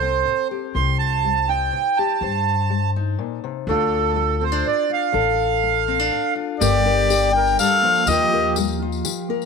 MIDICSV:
0, 0, Header, 1, 7, 480
1, 0, Start_track
1, 0, Key_signature, -2, "minor"
1, 0, Tempo, 488202
1, 735, Time_signature, 3, 2, 24, 8
1, 9294, End_track
2, 0, Start_track
2, 0, Title_t, "Harmonica"
2, 0, Program_c, 0, 22
2, 6489, Note_on_c, 0, 74, 95
2, 7210, Note_on_c, 0, 79, 108
2, 7224, Note_off_c, 0, 74, 0
2, 7453, Note_off_c, 0, 79, 0
2, 7468, Note_on_c, 0, 77, 97
2, 7954, Note_on_c, 0, 75, 89
2, 7969, Note_off_c, 0, 77, 0
2, 8424, Note_off_c, 0, 75, 0
2, 9294, End_track
3, 0, Start_track
3, 0, Title_t, "Accordion"
3, 0, Program_c, 1, 21
3, 0, Note_on_c, 1, 72, 90
3, 469, Note_off_c, 1, 72, 0
3, 735, Note_on_c, 1, 84, 90
3, 958, Note_off_c, 1, 84, 0
3, 969, Note_on_c, 1, 81, 88
3, 1466, Note_on_c, 1, 79, 87
3, 1467, Note_off_c, 1, 81, 0
3, 1935, Note_on_c, 1, 81, 81
3, 1955, Note_off_c, 1, 79, 0
3, 2857, Note_off_c, 1, 81, 0
3, 3625, Note_on_c, 1, 69, 75
3, 4357, Note_on_c, 1, 72, 78
3, 4363, Note_off_c, 1, 69, 0
3, 4593, Note_on_c, 1, 74, 92
3, 4594, Note_off_c, 1, 72, 0
3, 4833, Note_off_c, 1, 74, 0
3, 4846, Note_on_c, 1, 77, 84
3, 6233, Note_off_c, 1, 77, 0
3, 6494, Note_on_c, 1, 67, 81
3, 7176, Note_off_c, 1, 67, 0
3, 7242, Note_on_c, 1, 70, 88
3, 7460, Note_on_c, 1, 69, 87
3, 7470, Note_off_c, 1, 70, 0
3, 7904, Note_off_c, 1, 69, 0
3, 7956, Note_on_c, 1, 67, 77
3, 8425, Note_off_c, 1, 67, 0
3, 9294, End_track
4, 0, Start_track
4, 0, Title_t, "Clean electric guitar"
4, 0, Program_c, 2, 27
4, 6501, Note_on_c, 2, 55, 76
4, 6741, Note_on_c, 2, 62, 56
4, 7202, Note_off_c, 2, 62, 0
4, 7214, Note_on_c, 2, 62, 60
4, 7692, Note_on_c, 2, 58, 59
4, 7930, Note_off_c, 2, 55, 0
4, 7934, Note_on_c, 2, 53, 84
4, 7939, Note_on_c, 2, 67, 69
4, 7982, Note_off_c, 2, 58, 0
4, 7982, Note_off_c, 2, 62, 0
4, 8173, Note_on_c, 2, 65, 59
4, 8406, Note_off_c, 2, 67, 0
4, 8418, Note_on_c, 2, 67, 62
4, 8644, Note_off_c, 2, 65, 0
4, 8648, Note_on_c, 2, 65, 62
4, 8881, Note_off_c, 2, 67, 0
4, 8893, Note_on_c, 2, 67, 66
4, 9132, Note_on_c, 2, 58, 56
4, 9294, Note_off_c, 2, 53, 0
4, 9294, Note_off_c, 2, 58, 0
4, 9294, Note_off_c, 2, 65, 0
4, 9294, Note_off_c, 2, 67, 0
4, 9294, End_track
5, 0, Start_track
5, 0, Title_t, "Steel-string acoustic guitar"
5, 0, Program_c, 3, 25
5, 0, Note_on_c, 3, 57, 54
5, 0, Note_on_c, 3, 69, 60
5, 20, Note_on_c, 3, 60, 52
5, 206, Note_off_c, 3, 57, 0
5, 251, Note_on_c, 3, 45, 56
5, 502, Note_on_c, 3, 67, 52
5, 685, Note_off_c, 3, 45, 0
5, 743, Note_off_c, 3, 69, 0
5, 745, Note_on_c, 3, 48, 64
5, 750, Note_on_c, 3, 72, 60
5, 1172, Note_off_c, 3, 48, 0
5, 1224, Note_on_c, 3, 55, 53
5, 1461, Note_off_c, 3, 60, 0
5, 1465, Note_on_c, 3, 63, 47
5, 1652, Note_off_c, 3, 55, 0
5, 1700, Note_on_c, 3, 48, 58
5, 1951, Note_off_c, 3, 67, 0
5, 1955, Note_on_c, 3, 67, 55
5, 2130, Note_off_c, 3, 48, 0
5, 2152, Note_off_c, 3, 63, 0
5, 2154, Note_off_c, 3, 72, 0
5, 2156, Note_off_c, 3, 67, 0
5, 2177, Note_on_c, 3, 48, 66
5, 2189, Note_on_c, 3, 72, 63
5, 2609, Note_off_c, 3, 48, 0
5, 2655, Note_on_c, 3, 55, 55
5, 2913, Note_on_c, 3, 63, 53
5, 3088, Note_off_c, 3, 55, 0
5, 3133, Note_on_c, 3, 46, 60
5, 3375, Note_off_c, 3, 46, 0
5, 3379, Note_on_c, 3, 48, 61
5, 3595, Note_off_c, 3, 72, 0
5, 3596, Note_off_c, 3, 63, 0
5, 3618, Note_off_c, 3, 48, 0
5, 3620, Note_on_c, 3, 50, 64
5, 3626, Note_on_c, 3, 57, 58
5, 3634, Note_on_c, 3, 62, 55
5, 3642, Note_on_c, 3, 65, 55
5, 4051, Note_off_c, 3, 50, 0
5, 4088, Note_off_c, 3, 57, 0
5, 4092, Note_on_c, 3, 57, 59
5, 4333, Note_off_c, 3, 62, 0
5, 4337, Note_on_c, 3, 60, 52
5, 4442, Note_off_c, 3, 60, 0
5, 4442, Note_on_c, 3, 62, 47
5, 4527, Note_off_c, 3, 57, 0
5, 4574, Note_on_c, 3, 45, 57
5, 4802, Note_off_c, 3, 65, 0
5, 4814, Note_on_c, 3, 65, 57
5, 5008, Note_off_c, 3, 45, 0
5, 5027, Note_off_c, 3, 65, 0
5, 5039, Note_on_c, 3, 50, 69
5, 5050, Note_off_c, 3, 62, 0
5, 5053, Note_on_c, 3, 69, 62
5, 5481, Note_off_c, 3, 50, 0
5, 5533, Note_on_c, 3, 57, 55
5, 5780, Note_on_c, 3, 60, 53
5, 5894, Note_off_c, 3, 60, 0
5, 5894, Note_on_c, 3, 62, 49
5, 5968, Note_off_c, 3, 57, 0
5, 6020, Note_on_c, 3, 45, 56
5, 6247, Note_on_c, 3, 65, 59
5, 6451, Note_off_c, 3, 45, 0
5, 6464, Note_off_c, 3, 65, 0
5, 6496, Note_off_c, 3, 62, 0
5, 6499, Note_on_c, 3, 55, 78
5, 6504, Note_on_c, 3, 70, 58
5, 6737, Note_off_c, 3, 70, 0
5, 6741, Note_on_c, 3, 70, 56
5, 6932, Note_off_c, 3, 55, 0
5, 6980, Note_on_c, 3, 67, 59
5, 7411, Note_off_c, 3, 67, 0
5, 7469, Note_on_c, 3, 55, 59
5, 7703, Note_off_c, 3, 55, 0
5, 7710, Note_on_c, 3, 53, 74
5, 7934, Note_off_c, 3, 69, 0
5, 7943, Note_off_c, 3, 53, 0
5, 7949, Note_on_c, 3, 51, 79
5, 7962, Note_on_c, 3, 65, 62
5, 7964, Note_off_c, 3, 70, 0
5, 7968, Note_on_c, 3, 70, 64
5, 8184, Note_off_c, 3, 70, 0
5, 8196, Note_on_c, 3, 70, 57
5, 8374, Note_off_c, 3, 51, 0
5, 8433, Note_on_c, 3, 55, 65
5, 8671, Note_off_c, 3, 65, 0
5, 8675, Note_on_c, 3, 65, 59
5, 8855, Note_off_c, 3, 55, 0
5, 8901, Note_on_c, 3, 51, 63
5, 9130, Note_off_c, 3, 70, 0
5, 9141, Note_on_c, 3, 70, 66
5, 9294, Note_off_c, 3, 51, 0
5, 9294, Note_off_c, 3, 65, 0
5, 9294, Note_off_c, 3, 70, 0
5, 9294, End_track
6, 0, Start_track
6, 0, Title_t, "Upright bass"
6, 0, Program_c, 4, 32
6, 0, Note_on_c, 4, 36, 86
6, 215, Note_off_c, 4, 36, 0
6, 735, Note_on_c, 4, 36, 80
6, 1656, Note_off_c, 4, 36, 0
6, 2173, Note_on_c, 4, 43, 76
6, 3096, Note_off_c, 4, 43, 0
6, 3608, Note_on_c, 4, 38, 89
6, 4534, Note_off_c, 4, 38, 0
6, 5053, Note_on_c, 4, 33, 75
6, 5976, Note_off_c, 4, 33, 0
6, 6499, Note_on_c, 4, 31, 98
6, 7419, Note_off_c, 4, 31, 0
6, 7930, Note_on_c, 4, 39, 90
6, 8852, Note_off_c, 4, 39, 0
6, 9294, End_track
7, 0, Start_track
7, 0, Title_t, "Drums"
7, 6503, Note_on_c, 9, 54, 113
7, 6602, Note_off_c, 9, 54, 0
7, 6982, Note_on_c, 9, 54, 90
7, 7081, Note_off_c, 9, 54, 0
7, 7105, Note_on_c, 9, 54, 31
7, 7203, Note_off_c, 9, 54, 0
7, 7346, Note_on_c, 9, 54, 28
7, 7444, Note_off_c, 9, 54, 0
7, 7462, Note_on_c, 9, 54, 91
7, 7561, Note_off_c, 9, 54, 0
7, 7819, Note_on_c, 9, 54, 27
7, 7917, Note_off_c, 9, 54, 0
7, 7934, Note_on_c, 9, 54, 93
7, 8033, Note_off_c, 9, 54, 0
7, 8416, Note_on_c, 9, 54, 90
7, 8515, Note_off_c, 9, 54, 0
7, 8533, Note_on_c, 9, 54, 32
7, 8631, Note_off_c, 9, 54, 0
7, 8773, Note_on_c, 9, 54, 27
7, 8872, Note_off_c, 9, 54, 0
7, 8896, Note_on_c, 9, 54, 94
7, 8994, Note_off_c, 9, 54, 0
7, 9258, Note_on_c, 9, 54, 28
7, 9294, Note_off_c, 9, 54, 0
7, 9294, End_track
0, 0, End_of_file